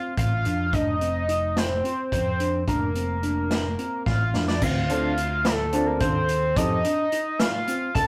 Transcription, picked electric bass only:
0, 0, Header, 1, 2, 480
1, 0, Start_track
1, 0, Tempo, 556070
1, 630, Time_signature, 7, 3, 24, 8
1, 6966, End_track
2, 0, Start_track
2, 0, Title_t, "Picked electric bass"
2, 0, Program_c, 0, 34
2, 151, Note_on_c, 0, 33, 83
2, 372, Note_off_c, 0, 33, 0
2, 393, Note_on_c, 0, 41, 76
2, 613, Note_off_c, 0, 41, 0
2, 630, Note_on_c, 0, 29, 80
2, 1556, Note_off_c, 0, 29, 0
2, 1829, Note_on_c, 0, 41, 73
2, 2276, Note_off_c, 0, 41, 0
2, 2307, Note_on_c, 0, 29, 85
2, 3235, Note_off_c, 0, 29, 0
2, 3508, Note_on_c, 0, 33, 84
2, 3731, Note_off_c, 0, 33, 0
2, 3749, Note_on_c, 0, 41, 73
2, 3971, Note_off_c, 0, 41, 0
2, 3987, Note_on_c, 0, 38, 90
2, 4210, Note_off_c, 0, 38, 0
2, 4232, Note_on_c, 0, 38, 75
2, 5157, Note_off_c, 0, 38, 0
2, 5187, Note_on_c, 0, 39, 84
2, 5635, Note_off_c, 0, 39, 0
2, 5668, Note_on_c, 0, 41, 87
2, 5891, Note_off_c, 0, 41, 0
2, 6866, Note_on_c, 0, 36, 95
2, 6966, Note_off_c, 0, 36, 0
2, 6966, End_track
0, 0, End_of_file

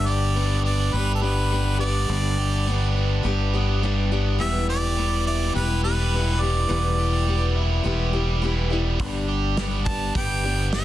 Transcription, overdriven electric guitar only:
0, 0, Header, 1, 2, 480
1, 0, Start_track
1, 0, Key_signature, 1, "major"
1, 0, Tempo, 575816
1, 1745, Time_signature, 4, 2, 24, 8
1, 9041, End_track
2, 0, Start_track
2, 0, Title_t, "Overdriven electric guitar"
2, 0, Program_c, 0, 29
2, 0, Note_on_c, 0, 43, 67
2, 51, Note_on_c, 0, 67, 73
2, 305, Note_on_c, 0, 59, 62
2, 539, Note_on_c, 0, 62, 63
2, 769, Note_off_c, 0, 67, 0
2, 772, Note_on_c, 0, 67, 69
2, 1013, Note_off_c, 0, 59, 0
2, 1016, Note_on_c, 0, 59, 59
2, 1018, Note_off_c, 0, 43, 0
2, 1260, Note_on_c, 0, 55, 62
2, 1500, Note_off_c, 0, 59, 0
2, 1504, Note_on_c, 0, 59, 56
2, 1743, Note_off_c, 0, 62, 0
2, 1744, Note_on_c, 0, 43, 66
2, 1981, Note_off_c, 0, 67, 0
2, 1984, Note_on_c, 0, 67, 75
2, 2211, Note_off_c, 0, 59, 0
2, 2215, Note_on_c, 0, 59, 63
2, 2464, Note_on_c, 0, 62, 59
2, 2699, Note_off_c, 0, 67, 0
2, 2702, Note_on_c, 0, 67, 62
2, 2944, Note_off_c, 0, 59, 0
2, 2946, Note_off_c, 0, 43, 0
2, 2947, Note_on_c, 0, 59, 63
2, 3183, Note_off_c, 0, 55, 0
2, 3186, Note_on_c, 0, 55, 68
2, 3426, Note_off_c, 0, 59, 0
2, 3429, Note_on_c, 0, 59, 65
2, 3666, Note_off_c, 0, 62, 0
2, 3670, Note_on_c, 0, 40, 69
2, 3913, Note_off_c, 0, 67, 0
2, 3916, Note_on_c, 0, 67, 72
2, 4142, Note_off_c, 0, 59, 0
2, 4146, Note_off_c, 0, 55, 0
2, 4146, Note_on_c, 0, 55, 61
2, 4399, Note_on_c, 0, 64, 60
2, 4626, Note_off_c, 0, 67, 0
2, 4630, Note_on_c, 0, 67, 65
2, 4869, Note_off_c, 0, 40, 0
2, 4869, Note_off_c, 0, 55, 0
2, 4873, Note_on_c, 0, 55, 62
2, 5125, Note_on_c, 0, 52, 67
2, 5357, Note_off_c, 0, 55, 0
2, 5360, Note_on_c, 0, 55, 58
2, 5593, Note_off_c, 0, 64, 0
2, 5596, Note_on_c, 0, 40, 67
2, 5822, Note_off_c, 0, 67, 0
2, 5825, Note_on_c, 0, 67, 71
2, 6056, Note_off_c, 0, 55, 0
2, 6059, Note_on_c, 0, 55, 65
2, 6301, Note_on_c, 0, 64, 62
2, 6316, Note_off_c, 0, 52, 0
2, 6537, Note_off_c, 0, 67, 0
2, 6540, Note_on_c, 0, 67, 66
2, 6777, Note_off_c, 0, 55, 0
2, 6780, Note_on_c, 0, 55, 62
2, 6791, Note_off_c, 0, 40, 0
2, 7022, Note_on_c, 0, 52, 65
2, 7258, Note_off_c, 0, 55, 0
2, 7261, Note_on_c, 0, 55, 59
2, 7503, Note_off_c, 0, 64, 0
2, 7504, Note_off_c, 0, 52, 0
2, 7507, Note_on_c, 0, 43, 63
2, 7741, Note_off_c, 0, 67, 0
2, 7744, Note_on_c, 0, 67, 72
2, 7980, Note_off_c, 0, 55, 0
2, 7984, Note_on_c, 0, 59, 57
2, 8214, Note_on_c, 0, 62, 55
2, 8463, Note_off_c, 0, 67, 0
2, 8466, Note_on_c, 0, 67, 68
2, 8705, Note_off_c, 0, 43, 0
2, 8706, Note_off_c, 0, 59, 0
2, 8709, Note_on_c, 0, 59, 61
2, 8952, Note_on_c, 0, 55, 67
2, 9041, Note_off_c, 0, 55, 0
2, 9041, Note_off_c, 0, 59, 0
2, 9041, Note_off_c, 0, 62, 0
2, 9041, Note_off_c, 0, 67, 0
2, 9041, End_track
0, 0, End_of_file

